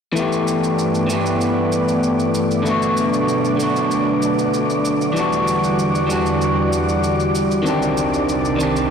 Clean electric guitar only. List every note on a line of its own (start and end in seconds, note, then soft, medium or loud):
0.13 1.05 E3 medium
0.13 1.06 A3 medium
0.17 1.07 B3 medium
0.17 1.08 G4 medium
1.07 2.61 E3 medium
1.07 2.62 A3 medium
1.11 2.63 B3 medium
1.11 2.64 G4 medium
2.63 3.55 D3 medium
2.63 3.56 A3 medium
2.67 3.57 B3 medium
2.67 3.58 F#4 medium
3.57 5.11 D3 medium
3.57 5.12 A3 medium
3.61 5.13 B3 medium
3.61 5.14 F#4 medium
5.13 6.05 E3 medium
5.13 6.06 G3 medium
5.17 6.07 D4 medium
5.17 6.08 F#4 medium
6.07 7.61 E3 medium
6.07 7.62 G3 medium
6.11 7.63 D4 medium
6.11 7.64 F#4 medium
7.63 8.55 D#3 medium
7.63 8.56 C4 medium
7.67 8.57 D4 medium
7.67 8.58 G4 loud
8.56 8.90 D#3 medium
8.56 8.90 C4 medium
8.61 8.90 D4 medium
8.61 8.90 G4 medium